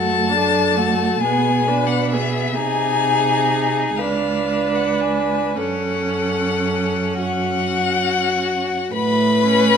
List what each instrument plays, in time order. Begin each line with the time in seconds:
Already playing: cello F#2, viola A3, violin F#4 A5
0.29 viola D4, violin A4
0.76 viola A3, violin F#4
1.20 cello B2, viola B3, violin G#4 G#5
1.67 viola D4, violin B4
1.87 violin F#5
2.10 viola B3, violin G#4 E5
2.54 cello C3, violin G#4 G#5
2.58 viola D#4
3.96 cello C#2, violin B4 F5
4.01 viola D4
4.75 violin F#5
5.00 violin G#5
5.56 cello F#2, viola C#4, violin A4 F#5
7.19 violin F#4 F#5
8.93 cello A2, violin B4 B5
9.42 viola C#4